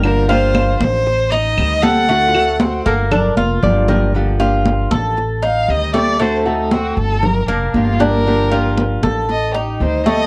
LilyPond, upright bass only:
\new Staff \with { instrumentName = "Upright bass" } { \clef bass \time 4/4 \key g \minor \tempo 4 = 117 g,,4. a,,4. d,4~ | d,4. g,,4 f,,8 g,,4~ | g,,4. a,,4. d,4~ | d,4. g,,4 f,,8 g,,4~ |
g,,4. a,,4. d,4 | }